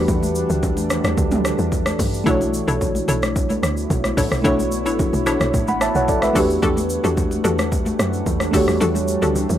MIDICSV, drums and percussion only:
0, 0, Header, 1, 2, 480
1, 0, Start_track
1, 0, Tempo, 545455
1, 73, Time_signature, 4, 2, 24, 8
1, 8433, End_track
2, 0, Start_track
2, 0, Title_t, "Drums"
2, 73, Note_on_c, 9, 36, 127
2, 73, Note_on_c, 9, 82, 68
2, 80, Note_on_c, 9, 64, 67
2, 161, Note_off_c, 9, 36, 0
2, 161, Note_off_c, 9, 82, 0
2, 168, Note_off_c, 9, 64, 0
2, 200, Note_on_c, 9, 63, 71
2, 204, Note_on_c, 9, 82, 66
2, 288, Note_off_c, 9, 63, 0
2, 292, Note_off_c, 9, 82, 0
2, 310, Note_on_c, 9, 82, 83
2, 398, Note_off_c, 9, 82, 0
2, 437, Note_on_c, 9, 82, 55
2, 525, Note_off_c, 9, 82, 0
2, 554, Note_on_c, 9, 36, 95
2, 555, Note_on_c, 9, 82, 67
2, 557, Note_on_c, 9, 64, 87
2, 642, Note_off_c, 9, 36, 0
2, 643, Note_off_c, 9, 82, 0
2, 645, Note_off_c, 9, 64, 0
2, 676, Note_on_c, 9, 63, 78
2, 680, Note_on_c, 9, 82, 57
2, 764, Note_off_c, 9, 63, 0
2, 768, Note_off_c, 9, 82, 0
2, 793, Note_on_c, 9, 82, 87
2, 795, Note_on_c, 9, 37, 103
2, 797, Note_on_c, 9, 64, 75
2, 881, Note_off_c, 9, 82, 0
2, 883, Note_off_c, 9, 37, 0
2, 885, Note_off_c, 9, 64, 0
2, 917, Note_on_c, 9, 63, 64
2, 919, Note_on_c, 9, 82, 58
2, 921, Note_on_c, 9, 37, 96
2, 1005, Note_off_c, 9, 63, 0
2, 1007, Note_off_c, 9, 82, 0
2, 1009, Note_off_c, 9, 37, 0
2, 1035, Note_on_c, 9, 36, 123
2, 1036, Note_on_c, 9, 82, 80
2, 1123, Note_off_c, 9, 36, 0
2, 1124, Note_off_c, 9, 82, 0
2, 1156, Note_on_c, 9, 82, 49
2, 1158, Note_on_c, 9, 45, 97
2, 1162, Note_on_c, 9, 63, 85
2, 1244, Note_off_c, 9, 82, 0
2, 1246, Note_off_c, 9, 45, 0
2, 1250, Note_off_c, 9, 63, 0
2, 1274, Note_on_c, 9, 37, 106
2, 1276, Note_on_c, 9, 82, 88
2, 1362, Note_off_c, 9, 37, 0
2, 1364, Note_off_c, 9, 82, 0
2, 1396, Note_on_c, 9, 82, 46
2, 1484, Note_off_c, 9, 82, 0
2, 1514, Note_on_c, 9, 36, 99
2, 1516, Note_on_c, 9, 82, 67
2, 1602, Note_off_c, 9, 36, 0
2, 1604, Note_off_c, 9, 82, 0
2, 1635, Note_on_c, 9, 37, 97
2, 1641, Note_on_c, 9, 63, 60
2, 1641, Note_on_c, 9, 82, 59
2, 1723, Note_off_c, 9, 37, 0
2, 1729, Note_off_c, 9, 63, 0
2, 1729, Note_off_c, 9, 82, 0
2, 1753, Note_on_c, 9, 36, 91
2, 1754, Note_on_c, 9, 64, 76
2, 1756, Note_on_c, 9, 46, 76
2, 1756, Note_on_c, 9, 82, 93
2, 1841, Note_off_c, 9, 36, 0
2, 1842, Note_off_c, 9, 64, 0
2, 1844, Note_off_c, 9, 46, 0
2, 1844, Note_off_c, 9, 82, 0
2, 1883, Note_on_c, 9, 82, 52
2, 1971, Note_off_c, 9, 82, 0
2, 1994, Note_on_c, 9, 36, 121
2, 1994, Note_on_c, 9, 82, 69
2, 2000, Note_on_c, 9, 64, 69
2, 2082, Note_off_c, 9, 36, 0
2, 2082, Note_off_c, 9, 82, 0
2, 2088, Note_off_c, 9, 64, 0
2, 2120, Note_on_c, 9, 63, 72
2, 2124, Note_on_c, 9, 82, 69
2, 2208, Note_off_c, 9, 63, 0
2, 2212, Note_off_c, 9, 82, 0
2, 2233, Note_on_c, 9, 82, 85
2, 2321, Note_off_c, 9, 82, 0
2, 2359, Note_on_c, 9, 82, 55
2, 2447, Note_off_c, 9, 82, 0
2, 2475, Note_on_c, 9, 36, 93
2, 2476, Note_on_c, 9, 64, 84
2, 2477, Note_on_c, 9, 82, 70
2, 2563, Note_off_c, 9, 36, 0
2, 2564, Note_off_c, 9, 64, 0
2, 2565, Note_off_c, 9, 82, 0
2, 2595, Note_on_c, 9, 63, 75
2, 2602, Note_on_c, 9, 82, 58
2, 2683, Note_off_c, 9, 63, 0
2, 2690, Note_off_c, 9, 82, 0
2, 2715, Note_on_c, 9, 82, 86
2, 2718, Note_on_c, 9, 64, 77
2, 2803, Note_off_c, 9, 82, 0
2, 2806, Note_off_c, 9, 64, 0
2, 2837, Note_on_c, 9, 63, 66
2, 2841, Note_on_c, 9, 82, 58
2, 2842, Note_on_c, 9, 37, 100
2, 2925, Note_off_c, 9, 63, 0
2, 2929, Note_off_c, 9, 82, 0
2, 2930, Note_off_c, 9, 37, 0
2, 2956, Note_on_c, 9, 36, 123
2, 2958, Note_on_c, 9, 82, 82
2, 3044, Note_off_c, 9, 36, 0
2, 3046, Note_off_c, 9, 82, 0
2, 3078, Note_on_c, 9, 82, 48
2, 3083, Note_on_c, 9, 63, 85
2, 3166, Note_off_c, 9, 82, 0
2, 3171, Note_off_c, 9, 63, 0
2, 3197, Note_on_c, 9, 37, 99
2, 3199, Note_on_c, 9, 82, 86
2, 3285, Note_off_c, 9, 37, 0
2, 3287, Note_off_c, 9, 82, 0
2, 3318, Note_on_c, 9, 82, 47
2, 3406, Note_off_c, 9, 82, 0
2, 3435, Note_on_c, 9, 36, 100
2, 3437, Note_on_c, 9, 82, 68
2, 3523, Note_off_c, 9, 36, 0
2, 3525, Note_off_c, 9, 82, 0
2, 3556, Note_on_c, 9, 37, 93
2, 3561, Note_on_c, 9, 82, 59
2, 3562, Note_on_c, 9, 63, 63
2, 3644, Note_off_c, 9, 37, 0
2, 3649, Note_off_c, 9, 82, 0
2, 3650, Note_off_c, 9, 63, 0
2, 3673, Note_on_c, 9, 36, 95
2, 3675, Note_on_c, 9, 64, 75
2, 3677, Note_on_c, 9, 46, 74
2, 3677, Note_on_c, 9, 82, 93
2, 3761, Note_off_c, 9, 36, 0
2, 3763, Note_off_c, 9, 64, 0
2, 3765, Note_off_c, 9, 46, 0
2, 3765, Note_off_c, 9, 82, 0
2, 3798, Note_on_c, 9, 37, 92
2, 3801, Note_on_c, 9, 82, 53
2, 3886, Note_off_c, 9, 37, 0
2, 3889, Note_off_c, 9, 82, 0
2, 3914, Note_on_c, 9, 36, 126
2, 3914, Note_on_c, 9, 82, 70
2, 3921, Note_on_c, 9, 64, 67
2, 4002, Note_off_c, 9, 36, 0
2, 4002, Note_off_c, 9, 82, 0
2, 4009, Note_off_c, 9, 64, 0
2, 4041, Note_on_c, 9, 63, 72
2, 4044, Note_on_c, 9, 82, 72
2, 4129, Note_off_c, 9, 63, 0
2, 4132, Note_off_c, 9, 82, 0
2, 4151, Note_on_c, 9, 82, 88
2, 4239, Note_off_c, 9, 82, 0
2, 4278, Note_on_c, 9, 82, 54
2, 4366, Note_off_c, 9, 82, 0
2, 4394, Note_on_c, 9, 36, 94
2, 4395, Note_on_c, 9, 82, 71
2, 4399, Note_on_c, 9, 64, 87
2, 4482, Note_off_c, 9, 36, 0
2, 4483, Note_off_c, 9, 82, 0
2, 4487, Note_off_c, 9, 64, 0
2, 4516, Note_on_c, 9, 63, 76
2, 4519, Note_on_c, 9, 82, 56
2, 4604, Note_off_c, 9, 63, 0
2, 4607, Note_off_c, 9, 82, 0
2, 4633, Note_on_c, 9, 82, 87
2, 4635, Note_on_c, 9, 37, 101
2, 4636, Note_on_c, 9, 64, 78
2, 4721, Note_off_c, 9, 82, 0
2, 4723, Note_off_c, 9, 37, 0
2, 4724, Note_off_c, 9, 64, 0
2, 4758, Note_on_c, 9, 63, 66
2, 4758, Note_on_c, 9, 82, 58
2, 4759, Note_on_c, 9, 37, 96
2, 4846, Note_off_c, 9, 63, 0
2, 4846, Note_off_c, 9, 82, 0
2, 4847, Note_off_c, 9, 37, 0
2, 4875, Note_on_c, 9, 36, 120
2, 4876, Note_on_c, 9, 82, 81
2, 4963, Note_off_c, 9, 36, 0
2, 4964, Note_off_c, 9, 82, 0
2, 4995, Note_on_c, 9, 82, 49
2, 5002, Note_on_c, 9, 63, 86
2, 5083, Note_off_c, 9, 82, 0
2, 5090, Note_off_c, 9, 63, 0
2, 5113, Note_on_c, 9, 37, 108
2, 5115, Note_on_c, 9, 82, 87
2, 5201, Note_off_c, 9, 37, 0
2, 5203, Note_off_c, 9, 82, 0
2, 5235, Note_on_c, 9, 82, 44
2, 5323, Note_off_c, 9, 82, 0
2, 5353, Note_on_c, 9, 36, 99
2, 5353, Note_on_c, 9, 82, 67
2, 5441, Note_off_c, 9, 36, 0
2, 5441, Note_off_c, 9, 82, 0
2, 5474, Note_on_c, 9, 37, 95
2, 5479, Note_on_c, 9, 82, 60
2, 5480, Note_on_c, 9, 63, 59
2, 5562, Note_off_c, 9, 37, 0
2, 5567, Note_off_c, 9, 82, 0
2, 5568, Note_off_c, 9, 63, 0
2, 5592, Note_on_c, 9, 36, 89
2, 5595, Note_on_c, 9, 46, 75
2, 5595, Note_on_c, 9, 64, 75
2, 5595, Note_on_c, 9, 82, 91
2, 5680, Note_off_c, 9, 36, 0
2, 5683, Note_off_c, 9, 46, 0
2, 5683, Note_off_c, 9, 64, 0
2, 5683, Note_off_c, 9, 82, 0
2, 5721, Note_on_c, 9, 82, 52
2, 5809, Note_off_c, 9, 82, 0
2, 5831, Note_on_c, 9, 82, 73
2, 5833, Note_on_c, 9, 36, 124
2, 5840, Note_on_c, 9, 64, 67
2, 5919, Note_off_c, 9, 82, 0
2, 5921, Note_off_c, 9, 36, 0
2, 5928, Note_off_c, 9, 64, 0
2, 5959, Note_on_c, 9, 63, 71
2, 5962, Note_on_c, 9, 82, 70
2, 6047, Note_off_c, 9, 63, 0
2, 6050, Note_off_c, 9, 82, 0
2, 6070, Note_on_c, 9, 82, 85
2, 6158, Note_off_c, 9, 82, 0
2, 6197, Note_on_c, 9, 82, 57
2, 6285, Note_off_c, 9, 82, 0
2, 6313, Note_on_c, 9, 36, 94
2, 6314, Note_on_c, 9, 82, 72
2, 6316, Note_on_c, 9, 64, 91
2, 6401, Note_off_c, 9, 36, 0
2, 6402, Note_off_c, 9, 82, 0
2, 6404, Note_off_c, 9, 64, 0
2, 6434, Note_on_c, 9, 63, 77
2, 6439, Note_on_c, 9, 82, 54
2, 6522, Note_off_c, 9, 63, 0
2, 6527, Note_off_c, 9, 82, 0
2, 6552, Note_on_c, 9, 82, 91
2, 6555, Note_on_c, 9, 64, 77
2, 6640, Note_off_c, 9, 82, 0
2, 6643, Note_off_c, 9, 64, 0
2, 6675, Note_on_c, 9, 63, 67
2, 6678, Note_on_c, 9, 82, 56
2, 6680, Note_on_c, 9, 37, 97
2, 6763, Note_off_c, 9, 63, 0
2, 6766, Note_off_c, 9, 82, 0
2, 6768, Note_off_c, 9, 37, 0
2, 6794, Note_on_c, 9, 36, 118
2, 6796, Note_on_c, 9, 82, 79
2, 6882, Note_off_c, 9, 36, 0
2, 6884, Note_off_c, 9, 82, 0
2, 6916, Note_on_c, 9, 82, 49
2, 6919, Note_on_c, 9, 63, 86
2, 7004, Note_off_c, 9, 82, 0
2, 7007, Note_off_c, 9, 63, 0
2, 7035, Note_on_c, 9, 37, 100
2, 7037, Note_on_c, 9, 82, 89
2, 7123, Note_off_c, 9, 37, 0
2, 7125, Note_off_c, 9, 82, 0
2, 7156, Note_on_c, 9, 82, 48
2, 7244, Note_off_c, 9, 82, 0
2, 7272, Note_on_c, 9, 36, 94
2, 7274, Note_on_c, 9, 82, 63
2, 7360, Note_off_c, 9, 36, 0
2, 7362, Note_off_c, 9, 82, 0
2, 7393, Note_on_c, 9, 37, 93
2, 7398, Note_on_c, 9, 63, 61
2, 7399, Note_on_c, 9, 82, 59
2, 7481, Note_off_c, 9, 37, 0
2, 7486, Note_off_c, 9, 63, 0
2, 7487, Note_off_c, 9, 82, 0
2, 7511, Note_on_c, 9, 36, 95
2, 7513, Note_on_c, 9, 64, 74
2, 7514, Note_on_c, 9, 46, 77
2, 7514, Note_on_c, 9, 82, 92
2, 7599, Note_off_c, 9, 36, 0
2, 7601, Note_off_c, 9, 64, 0
2, 7602, Note_off_c, 9, 46, 0
2, 7602, Note_off_c, 9, 82, 0
2, 7637, Note_on_c, 9, 37, 93
2, 7640, Note_on_c, 9, 82, 53
2, 7725, Note_off_c, 9, 37, 0
2, 7728, Note_off_c, 9, 82, 0
2, 7753, Note_on_c, 9, 82, 70
2, 7757, Note_on_c, 9, 64, 66
2, 7841, Note_off_c, 9, 82, 0
2, 7845, Note_off_c, 9, 64, 0
2, 7877, Note_on_c, 9, 63, 72
2, 7882, Note_on_c, 9, 82, 72
2, 7965, Note_off_c, 9, 63, 0
2, 7970, Note_off_c, 9, 82, 0
2, 7989, Note_on_c, 9, 82, 86
2, 8077, Note_off_c, 9, 82, 0
2, 8116, Note_on_c, 9, 82, 57
2, 8204, Note_off_c, 9, 82, 0
2, 8234, Note_on_c, 9, 64, 88
2, 8234, Note_on_c, 9, 82, 74
2, 8322, Note_off_c, 9, 64, 0
2, 8322, Note_off_c, 9, 82, 0
2, 8354, Note_on_c, 9, 63, 75
2, 8359, Note_on_c, 9, 82, 58
2, 8433, Note_off_c, 9, 63, 0
2, 8433, Note_off_c, 9, 82, 0
2, 8433, End_track
0, 0, End_of_file